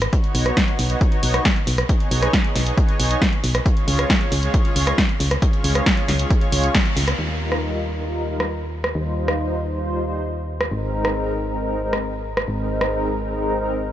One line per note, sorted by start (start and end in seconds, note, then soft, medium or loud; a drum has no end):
0.02 cross-stick medium
0.02 closed hi-hat soft
0.13 0.21 B3 medium
0.13 0.21 D#4 medium
0.13 0.21 F#4 medium
0.13 0.21 C#5 medium
0.13 kick loud
0.13 closed hi-hat soft
0.24 0.32 B3 medium
0.24 0.32 D#4 medium
0.24 0.32 F#4 medium
0.24 0.32 C#5 medium
0.24 closed hi-hat soft
0.35 0.52 B1 medium
0.35 0.50 B3 medium
0.35 0.50 D#4 medium
0.35 0.50 F#4 medium
0.35 0.50 C#5 medium
0.35 open hi-hat medium
0.46 cross-stick medium
0.46 closed hi-hat soft
0.57 0.73 B3 medium
0.57 0.72 D#4 medium
0.57 0.72 F#4 medium
0.57 0.72 C#5 medium
0.57 kick loud
0.57 snare loud
0.57 closed hi-hat medium
0.68 closed hi-hat soft
0.79 0.96 B1 medium
0.79 open hi-hat medium
0.90 0.98 B3 medium
0.90 0.98 D#4 medium
0.90 0.98 F#4 medium
0.90 0.98 C#5 medium
0.90 closed hi-hat soft
1.01 1.16 B3 medium
1.01 1.16 D#4 medium
1.01 1.16 F#4 medium
1.01 1.16 C#5 loud
1.01 kick loud
1.01 closed hi-hat soft
1.12 closed hi-hat soft
1.23 1.40 B1 medium
1.23 1.38 B3 medium
1.23 1.38 D#4 loud
1.23 1.38 F#4 loud
1.23 1.39 C#5 medium
1.23 open hi-hat loud
1.34 cross-stick medium
1.34 closed hi-hat medium
1.45 kick loud
1.45 snare loud
1.45 closed hi-hat soft
1.56 closed hi-hat soft
1.67 1.84 B1 loud
1.67 open hi-hat medium
1.78 cross-stick medium
1.78 closed hi-hat soft
1.89 1.97 B3 medium
1.89 1.97 D#4 medium
1.89 1.97 G#4 medium
1.89 1.97 C#5 medium
1.89 kick loud
1.89 closed hi-hat medium
2.00 2.08 B3 medium
2.00 2.08 D#4 medium
2.00 2.08 G#4 medium
2.00 2.08 C#5 medium
2.00 closed hi-hat soft
2.11 2.28 B1 loud
2.11 2.27 B3 medium
2.11 2.27 D#4 medium
2.11 2.27 G#4 medium
2.11 2.27 C#5 medium
2.11 open hi-hat loud
2.22 cross-stick medium
2.22 closed hi-hat medium
2.33 2.49 B3 medium
2.33 2.49 D#4 medium
2.33 2.49 G#4 medium
2.33 2.49 C#5 medium
2.33 kick loud
2.33 snare loud
2.33 closed hi-hat medium
2.44 closed hi-hat soft
2.55 2.72 B1 medium
2.55 snare soft
2.55 open hi-hat medium
2.67 2.74 B3 medium
2.67 2.74 D#4 medium
2.67 2.74 G#4 medium
2.67 2.74 C#5 medium
2.67 closed hi-hat medium
2.78 2.93 B3 medium
2.78 2.93 D#4 medium
2.78 2.93 G#4 medium
2.78 2.93 C#5 medium
2.78 kick loud
2.78 closed hi-hat soft
2.89 closed hi-hat soft
3.00 3.16 B1 medium
3.00 3.15 B3 medium
3.00 3.15 D#4 medium
3.00 3.15 G#4 medium
3.00 3.15 C#5 loud
3.00 open hi-hat loud
3.11 closed hi-hat medium
3.22 kick loud
3.22 snare loud
3.22 closed hi-hat soft
3.33 closed hi-hat soft
3.44 3.60 B1 loud
3.44 open hi-hat medium
3.55 cross-stick medium
3.55 closed hi-hat medium
3.66 3.74 G#3 medium
3.66 3.74 C#4 medium
3.66 3.74 F4 medium
3.66 3.74 C#5 medium
3.66 kick loud
3.66 closed hi-hat medium
3.77 3.85 G#3 medium
3.77 3.85 C#4 medium
3.77 3.85 F4 medium
3.77 3.85 C#5 medium
3.77 closed hi-hat soft
3.88 4.04 C#2 loud
3.88 4.03 G#3 medium
3.88 4.03 C#4 medium
3.88 4.03 F4 medium
3.88 4.03 C#5 medium
3.88 open hi-hat loud
3.99 cross-stick medium
3.99 closed hi-hat medium
4.10 4.25 G#3 medium
4.10 4.25 C#4 medium
4.10 4.25 F4 medium
4.10 4.25 C#5 medium
4.10 kick loud
4.10 snare loud
4.10 closed hi-hat medium
4.21 closed hi-hat soft
4.32 4.49 C#2 loud
4.32 open hi-hat medium
4.43 4.51 G#3 medium
4.43 4.51 C#4 medium
4.43 4.51 F4 medium
4.43 4.51 C#5 medium
4.43 closed hi-hat medium
4.54 4.69 G#3 medium
4.54 4.69 C#4 medium
4.54 4.69 F4 medium
4.54 4.69 C#5 medium
4.54 kick loud
4.54 closed hi-hat medium
4.65 closed hi-hat soft
4.76 4.93 C#2 medium
4.76 4.91 G#3 medium
4.76 4.92 C#4 loud
4.76 4.91 F4 loud
4.76 4.91 C#5 medium
4.76 open hi-hat loud
4.87 cross-stick medium
4.87 closed hi-hat medium
4.98 kick loud
4.98 snare loud
4.98 closed hi-hat medium
5.09 closed hi-hat soft
5.20 5.37 C#2 loud
5.20 open hi-hat medium
5.31 cross-stick medium
5.31 closed hi-hat soft
5.42 5.50 G#3 medium
5.42 5.50 C#4 medium
5.42 5.50 F4 medium
5.42 5.50 C#5 medium
5.42 kick loud
5.42 closed hi-hat medium
5.53 5.61 G#3 medium
5.53 5.61 C#4 loud
5.53 5.61 F4 medium
5.53 5.61 C#5 medium
5.53 closed hi-hat soft
5.64 5.81 C#2 loud
5.64 5.80 G#3 medium
5.64 5.80 C#4 medium
5.64 5.80 F4 medium
5.64 5.80 C#5 medium
5.64 open hi-hat loud
5.75 cross-stick medium
5.75 closed hi-hat medium
5.86 6.02 G#3 medium
5.86 6.02 C#4 medium
5.86 6.02 F4 medium
5.86 6.02 C#5 medium
5.86 kick loud
5.86 snare loud
5.86 closed hi-hat medium
5.97 closed hi-hat soft
6.08 6.25 C#2 loud
6.08 snare soft
6.08 open hi-hat medium
6.19 6.27 G#3 medium
6.19 6.27 C#4 medium
6.19 6.27 F4 medium
6.19 6.27 C#5 medium
6.19 closed hi-hat medium
6.30 6.46 G#3 medium
6.30 6.46 C#4 medium
6.30 6.46 F4 medium
6.30 6.46 C#5 medium
6.30 kick loud
6.30 closed hi-hat medium
6.41 closed hi-hat soft
6.52 6.69 C#2 medium
6.52 6.68 G#3 medium
6.52 6.68 C#4 loud
6.52 6.68 F4 loud
6.52 6.68 C#5 medium
6.52 open hi-hat loud
6.64 closed hi-hat medium
6.75 kick loud
6.75 snare loud
6.75 closed hi-hat medium
6.86 closed hi-hat soft
6.97 7.13 C#2 loud
6.97 open hi-hat medium
7.08 cross-stick medium
7.08 closed hi-hat medium
7.19 8.93 D#2 medium
7.19 7.26 G3 medium
7.19 7.26 D#4 medium
7.19 7.26 F4 medium
7.19 7.27 A#4 medium
7.30 7.38 G3 medium
7.30 7.37 D#4 medium
7.30 7.37 F4 medium
7.30 7.38 A#4 medium
7.41 7.56 G3 medium
7.41 7.56 D#4 medium
7.41 7.56 F4 medium
7.41 7.56 A#4 medium
7.52 cross-stick medium
7.63 7.78 G3 medium
7.63 7.78 D#4 medium
7.63 7.78 F4 medium
7.63 7.78 A#4 medium
7.96 8.03 G3 medium
7.96 8.04 D#4 medium
7.96 8.03 F4 medium
7.96 8.03 A#4 medium
8.07 8.22 G3 medium
8.07 8.22 D#4 medium
8.07 8.22 F4 medium
8.07 8.22 A#4 medium
8.29 8.44 G3 medium
8.29 8.44 D#4 medium
8.29 8.44 F4 medium
8.29 8.44 A#4 medium
8.40 cross-stick medium
8.84 cross-stick medium
8.95 10.69 D#2 medium
8.95 9.03 G3 medium
8.95 9.03 D#4 medium
8.95 9.03 F4 medium
8.95 9.03 C5 medium
9.06 9.14 G3 medium
9.06 9.14 D#4 medium
9.06 9.14 F4 medium
9.06 9.14 C5 medium
9.17 9.33 G3 medium
9.17 9.33 D#4 medium
9.17 9.32 F4 medium
9.17 9.32 C5 medium
9.28 cross-stick medium
9.39 9.55 G3 medium
9.39 9.55 D#4 medium
9.39 9.55 F4 medium
9.39 9.55 C5 medium
9.72 9.80 G3 medium
9.72 9.80 D#4 medium
9.72 9.80 F4 medium
9.72 9.80 C5 medium
9.83 9.99 G3 medium
9.83 9.99 D#4 medium
9.83 9.99 F4 medium
9.83 9.99 C5 medium
10.05 10.21 G3 medium
10.05 10.21 D#4 medium
10.05 10.21 F4 medium
10.05 10.21 C5 medium
10.61 cross-stick medium
10.71 12.46 G#1 medium
10.71 10.79 G#3 medium
10.71 10.79 C4 medium
10.71 10.79 D#4 medium
10.71 10.79 A#4 medium
10.83 10.90 G#3 medium
10.83 10.90 C4 medium
10.83 10.90 D#4 medium
10.83 10.90 A#4 medium
10.93 11.09 G#3 medium
10.93 11.09 C4 medium
10.93 11.09 D#4 medium
10.93 11.09 A#4 medium
11.05 cross-stick medium
11.16 11.31 G#3 medium
11.16 11.31 C4 medium
11.16 11.31 D#4 medium
11.16 11.31 A#4 medium
11.49 11.57 G#3 medium
11.49 11.57 C4 medium
11.49 11.57 D#4 medium
11.49 11.57 A#4 medium
11.60 11.75 G#3 medium
11.60 11.75 C4 medium
11.60 11.75 D#4 medium
11.60 11.75 A#4 medium
11.82 11.98 G#3 medium
11.82 11.98 C4 medium
11.82 11.98 D#4 medium
11.82 11.98 A#4 medium
11.93 cross-stick medium
12.37 cross-stick medium
12.48 13.92 G#1 medium
12.48 12.56 G#3 medium
12.48 12.56 C4 medium
12.48 12.56 D#4 medium
12.48 12.56 A#4 medium
12.59 12.67 G#3 medium
12.59 12.67 C4 medium
12.59 12.67 D#4 medium
12.59 12.67 A#4 medium
12.70 12.86 G#3 medium
12.70 12.86 C4 medium
12.70 12.86 D#4 medium
12.70 12.86 A#4 medium
12.81 cross-stick medium
12.92 13.08 G#3 medium
12.92 13.08 C4 medium
12.92 13.08 D#4 medium
12.92 13.08 A#4 medium
13.25 13.33 G#3 medium
13.25 13.33 C4 medium
13.25 13.33 D#4 medium
13.25 13.33 A#4 medium
13.37 13.52 G#3 medium
13.37 13.52 C4 medium
13.37 13.52 D#4 medium
13.37 13.52 A#4 medium
13.59 13.74 G#3 medium
13.59 13.74 C4 medium
13.59 13.74 D#4 medium
13.59 13.74 A#4 medium